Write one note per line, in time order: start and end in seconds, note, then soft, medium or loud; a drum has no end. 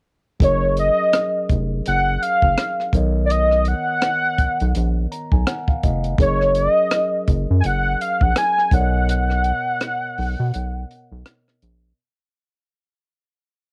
0.40 0.90 F#1 loud
0.40 2.89 F#3 medium
0.40 2.90 C#4 soft
0.40 2.90 G#4 medium
0.40 2.90 A#4 medium
0.40 0.76 C#5 medium
0.40 2.91 D#5 medium
0.40 kick loud
0.40 closed hi-hat medium
0.77 1.46 D#5 loud
0.77 closed hi-hat soft
1.13 cross-stick medium
1.13 closed hi-hat medium
1.49 1.81 F1 medium
1.49 kick medium
1.49 closed hi-hat medium
1.86 2.18 F#1 medium
1.86 2.24 F#5 loud
1.86 closed hi-hat medium
2.23 2.94 F5 loud
2.23 closed hi-hat medium
2.42 2.56 F#1 medium
2.42 kick medium
2.58 cross-stick medium
2.58 closed hi-hat medium
2.80 cross-stick soft
2.93 3.74 B1 medium
2.93 5.78 D#3 medium
2.93 5.79 B3 medium
2.93 5.79 A#4 medium
2.93 5.80 C#5 soft
2.93 5.80 D#5 medium
2.93 kick medium
2.93 closed hi-hat medium
3.25 3.33 D5 medium
3.30 3.69 D#5 medium
3.30 closed hi-hat medium
3.51 cross-stick soft
3.65 5.11 F#5 loud
3.65 closed hi-hat soft
4.02 cross-stick medium
4.02 closed hi-hat medium
4.38 4.48 B1 soft
4.38 kick medium
4.38 closed hi-hat medium
4.60 4.73 B1 medium
4.60 closed hi-hat soft
4.75 5.06 A#1 medium
4.75 closed hi-hat medium
5.12 5.30 A#5 medium
5.12 closed hi-hat medium
5.32 5.45 B1 medium
5.32 5.46 G#5 medium
5.32 kick medium
5.47 5.66 F#5 medium
5.47 cross-stick loud
5.47 closed hi-hat medium
5.68 5.82 F5 medium
5.68 kick medium
5.83 6.15 F1 medium
5.83 6.17 D#5 medium
5.83 kick medium
5.83 closed hi-hat medium
6.04 closed hi-hat soft
6.18 6.68 F#1 loud
6.18 8.67 F#3 medium
6.18 8.68 C#4 medium
6.18 8.68 G#4 medium
6.18 8.68 A#4 medium
6.18 6.27 C#5 medium
6.18 6.59 C#5 medium
6.18 kick loud
6.18 closed hi-hat medium
6.41 cross-stick soft
6.55 7.28 D#5 loud
6.55 closed hi-hat soft
6.91 cross-stick loud
6.91 closed hi-hat medium
7.28 7.46 F#1 medium
7.28 kick medium
7.28 closed hi-hat medium
7.51 7.63 F#2 medium
7.60 7.68 G#5 medium
7.60 closed hi-hat medium
7.65 7.95 F#1 medium
7.65 8.03 F#5 loud
8.01 8.24 F5 medium
8.01 closed hi-hat medium
8.21 8.34 A#1 medium
8.21 8.39 F#5 medium
8.21 kick medium
8.36 8.75 G#5 loud
8.36 cross-stick loud
8.36 closed hi-hat medium
8.58 cross-stick soft
8.71 9.52 B1 medium
8.71 11.57 B2 medium
8.71 11.57 B3 medium
8.71 11.57 A#4 medium
8.71 11.58 C#5 medium
8.71 8.81 D5 medium
8.71 11.62 F#5 loud
8.71 kick medium
8.71 closed hi-hat medium
8.81 11.62 D#5 medium
9.09 closed hi-hat medium
9.30 cross-stick soft
9.44 closed hi-hat soft
9.81 cross-stick medium
9.81 closed hi-hat medium
10.18 10.35 B1 medium
10.18 open hi-hat soft
10.39 10.51 B2 medium
10.54 10.85 B1 medium
10.54 closed hi-hat medium
10.91 closed hi-hat medium
11.12 11.24 B1 medium
11.26 cross-stick medium
11.26 closed hi-hat medium
11.48 cross-stick soft
11.62 11.93 A#1 medium
11.62 closed hi-hat medium